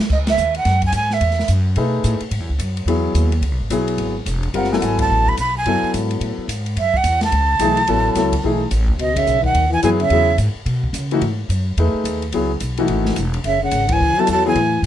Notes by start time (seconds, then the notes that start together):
0.10 C#2 D#5, kick, crash
0.27 E5, snare, ride
0.37 D#2, hi-hat pedal
0.54 F#5, ride
0.65 F#2, snare, ride
0.82 kick, ride
0.86 G#5
0.92 G#2 G#5, hi-hat pedal, ride
1.10 E5, snare
1.21 E2, ride
1.31 snare
1.39 snare
1.48 F#2, hi-hat pedal, ride
1.76 B2 A3 D#4 G#4 B4, ride
2.04 A2, hi-hat pedal, ride
2.20 muted upright bass stroke, ride
2.31 G#2, ride
2.40 E2
2.49 C#2
2.59 F#2, hi-hat pedal, ride
2.77 ride
2.86 E2 F#3 B3 E4 G#4, ride
3.14 D#2, hi-hat pedal, ride
3.32 ride
3.41 C#2, ride
3.51 B1
3.60 G#1
3.70 B1 F#3 B3 E4 G#4, hi-hat pedal, ride
3.88 ride
3.98 G#1, ride
4.26 E1, hi-hat pedal, ride
4.43 ride
4.54 F#1 G3 C4 F4 A#4 F#5, ride
4.64 snare
4.72 F#3 B3 E4 A4 G#5, snare
4.81 G#1 F#5 G#5, hi-hat pedal, ride
4.99 A5, kick, ride
5.10 A1
5.27 B5, kick
5.37 B1 B5, hi-hat pedal, ride
5.58 G#5
5.66 F#2 F#3 B3 E4 A4, ride
5.83 muted upright bass stroke
5.94 G#2, hi-hat pedal, ride
6.11 ride
6.21 A2, ride
6.38 muted upright bass stroke
6.48 G#2, hi-hat pedal, ride
6.66 ride
6.76 F#2 E5, ride
6.94 F#5, kick
7.04 E2, hi-hat pedal, ride
7.21 A5, snare, ride
7.32 C#2, ride
7.59 B1 E3 A3 D#4 G#4, hi-hat pedal, ride
7.77 ride
7.87 A1 F#3 B3 E4 A4, ride
8.15 C#2 F#3 B3 E4 A4, snare, hi-hat pedal, ride
8.32 kick, ride
8.44 B1 E3 A3 D#4 G#4
8.71 A1, hi-hat pedal, ride
8.88 kick
8.99 C#2 B2 D#5, ride
9.15 C#3 E5, kick, ride
9.26 B1, hi-hat pedal
9.42 D#3 F#5, kick
9.54 D#2, ride
9.69 E3 G#5
9.82 F#2 E3 F#3 B3 E4 G#4 G#5, hi-hat pedal, ride
9.99 C#3 E5, ride
10.10 E2 F#3 B3 E4 G#4, ride
10.38 G#2, hi-hat pedal, ride
10.55 muted upright bass stroke
10.66 B2, ride
10.83 kick
10.93 C#3, hi-hat pedal, ride
11.11 E3 A3 D#4 F#4, ride
11.21 G#2, ride
11.49 F#2, hi-hat pedal, ride
11.77 E2 A3 D#4 G#4 B4, ride
11.94 muted upright bass stroke
12.04 D#2, hi-hat pedal, ride
12.22 ride
12.32 C#2 F#3 B3 E4 G#4, ride
12.60 B1, hi-hat pedal, ride
12.77 E3 A3 D#4 F#4, ride
12.88 G#1, ride
13.05 snare
13.16 E1, hi-hat pedal, ride
13.34 ride
13.44 F#1 C#3 E5, ride
13.62 C#3 F#5
13.71 G#1, hi-hat pedal, ride
13.89 E3 G#5, kick, ride
14.00 C#2
14.18 F#3 B3 E4 A4 A5, muted upright bass stroke
14.27 E2 F#3, hi-hat pedal, ride
14.31 A5
14.45 E3 F#3 B3 E4 G#4 G#5
14.55 A2, ride
14.82 G#2